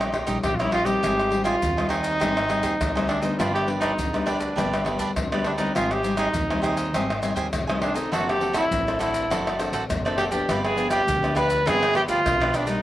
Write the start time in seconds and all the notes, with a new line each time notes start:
Already playing: A#1 A#2 G3 C#4 D#4 G4 C#5 D#5
0.01 pandeiro, tamborim, maracas
0.12 D#4 G4 C#5 D#5, pandeiro, tamborim, surdo
0.27 A#1 G3 C#4 D#4 G4 C#5 D#5, pandeiro, maracas, surdo
0.44 A#1 A#2 G4, pandeiro, tamborim, maracas, surdo
0.55 F4 D#5
0.60 G3 C#4 D#4 E4 G4 C#5, pandeiro, tamborim, maracas
0.71 D#4 F4 G4 C#5 D#5, pandeiro, tamborim
0.85 G3 C4 D#4 G4 C#5 D#5, pandeiro, maracas, surdo
1.02 G#1 G#2 G4 C5 D#5 G#5, pandeiro, tamborim, maracas, surdo
1.19 pandeiro, tamborim, maracas
1.30 G3 C4 D#4 G4 C5 D#5 G#5, pandeiro
1.44 F4 G4 C5 D#5 G#5, pandeiro, tamborim, maracas, surdo
1.62 D#2 D#3, pandeiro, maracas, surdo
1.77 G3 C4 D#4 C5 D#5 G#5, pandeiro, tamborim, maracas
1.89 D#4 G4 C5 D#5 G#5, pandeiro, tamborim
2.03 C5 D#5 G#5, pandeiro, maracas, surdo
2.20 G#1 G#2 G3 C4 D#4 G4 C5 D#5 G#5, pandeiro, tamborim, maracas, surdo
2.37 pandeiro, tamborim, maracas
2.49 G3 C4 D#4 G4 C5 D#5 G#5, pandeiro, tamborim, maracas, surdo
2.63 D#2 G4 C5 D#5 G#5, pandeiro, maracas, surdo
2.81 D2, pandeiro, tamborim, maracas, surdo
2.95 G3 C4 D#4 C5 D#5 G#5, pandeiro, tamborim, maracas
3.08 D4 G4 C5 D#5 G#5, pandeiro, tamborim
3.21 G3 B3 D4 D#4 C5 D#5 G#5, pandeiro, maracas, surdo
3.39 G1 G2 D4 F4 G4 B4 D5, pandeiro, tamborim, maracas, surdo
3.54 G4, pandeiro, tamborim, maracas
3.67 G3 B3 D4 G4 B4 D5, pandeiro
3.80 D4 D#4 G4 B4 D5, pandeiro, tamborim, maracas, surdo
3.98 D2 D3, pandeiro, maracas, surdo
4.13 G3 B3 D4 G4 B4 D5, pandeiro, tamborim, maracas
4.26 D4 G4 B4 D5, pandeiro, tamborim
4.38 G4 B4 D5, pandeiro, maracas, surdo
4.56 G1 G2 G3 B3 D4 G4 B4 D5, pandeiro, tamborim, maracas, surdo
4.74 pandeiro, tamborim, maracas
4.84 G3 B3 D4 G4 B4 D5, pandeiro, tamborim, surdo
4.99 D2 D4 G4 B4 D5, pandeiro, maracas, surdo
5.15 D2 D3, pandeiro, tamborim, maracas, surdo
5.32 G3 B3 D4 G4 B4 D5, pandeiro, tamborim, maracas
5.44 D4 G4 B4 D5, pandeiro, tamborim
5.57 G3 C4 D#4 G4 B4 D5, pandeiro, maracas, surdo
5.75 G#1 G#2 F4 G4 C5 D#5 G#5, pandeiro, tamborim, maracas, surdo
5.91 G4, pandeiro, tamborim, maracas
6.03 G3 C4 D#4 G4 C5 D#5 G#5, pandeiro, maracas
6.17 D#4 G4 C5 D#5 G#5, pandeiro, tamborim, maracas, surdo
6.34 D#2 D#3, pandeiro, maracas, surdo
6.50 G3 C4 D#4 C5 D#5 G#5, pandeiro, tamborim, maracas
6.62 D#4 G4 C5 D#5 G#5, pandeiro, tamborim, maracas
6.76 C5 D#5 G#5, pandeiro, maracas, surdo
6.93 G#1 G#2 G3 C4 D#4 G4 C5 D#5 G#5, pandeiro, tamborim, maracas, surdo
7.10 pandeiro, tamborim, maracas
7.22 G3 C4 D#4 G4 C5 D#5 G#5, pandeiro, tamborim, maracas
7.35 D#2 G4 C5 D#5 G#5, pandeiro, maracas, surdo
7.53 F1 D#3, pandeiro, tamborim, maracas, surdo
7.67 G3 C4 D#4 C5 D#5 G#5, pandeiro, tamborim, maracas
7.81 D4 G4 C5 D#5 G#5, pandeiro, tamborim
7.94 C4 D4 D#4 A4 C5 D#5 G#5, pandeiro, maracas, surdo
8.12 F#1 F#3 F#4 A4 C5 D5, pandeiro, tamborim, maracas, surdo
8.29 G4, pandeiro, tamborim, maracas
8.40 C4 D4 F#4 A4 C5 D5, pandeiro
8.53 E4 F#4 A4 C5 D5, pandeiro, tamborim, maracas, surdo
8.71 A1 F#3, pandeiro, maracas, surdo
8.87 C4 D4 A4 C5 D5, pandeiro, tamborim, maracas
8.99 E4 F#4 A4 C5 D5, pandeiro, tamborim, maracas
9.13 A4 C5 D5, pandeiro, maracas, surdo
9.30 F#1 F#3 C4 D4 F#4 A4 C5 D5, pandeiro, tamborim, maracas, surdo
9.47 pandeiro, tamborim, maracas
9.59 C4 D4 F#4 A4 C5 D5, pandeiro, tamborim, maracas
9.72 A1 F#4 A4 C5 D5, pandeiro, maracas, surdo
9.89 F#1 F#3, pandeiro, tamborim, maracas, surdo
10.05 C4 D4 A4 C5 D5, pandeiro, tamborim, maracas
10.17 F#4 G4 A4 C5, pandeiro, tamborim
10.21 D5
10.31 F3 B3 D4 G4 A4 C5 D5, pandeiro, maracas, surdo
10.49 G1 G2 F4 G4 B4 D5, pandeiro, tamborim, maracas, surdo
10.65 G#4, pandeiro, tamborim, maracas
10.76 F3 B3 D4 F4 G4 B4 D5, pandeiro, maracas
10.91 F4 G4 B4 D5, pandeiro, tamborim, maracas, surdo
11.07 D2 D3, pandeiro, maracas, surdo
11.22 F3 B3 D4 G4 B4 D5, pandeiro, tamborim, maracas
11.35 F4 G4 B4 D5, pandeiro, tamborim, maracas
11.48 G4 B4 D5, pandeiro, maracas, surdo
11.65 G1 G2 F3 B3 D4 F4 G4 G#4 B4 D5, pandeiro, tamborim, maracas, surdo
11.83 pandeiro, tamborim, maracas
11.93 F3 B3 D4 F4 G4 B4 D5, pandeiro, tamborim
12.08 D2 F4 G4 B4 D5, pandeiro, maracas, surdo
12.26 B1 D3, pandeiro, tamborim, maracas, surdo
12.40 F3 B3 D4 G4 B4 D5, pandeiro, tamborim, maracas
12.52 D4 F4 G4 B4 D5, pandeiro, tamborim, maracas
12.66 G3 A#3 D#4 G4 B4 D5, pandeiro, maracas, surdo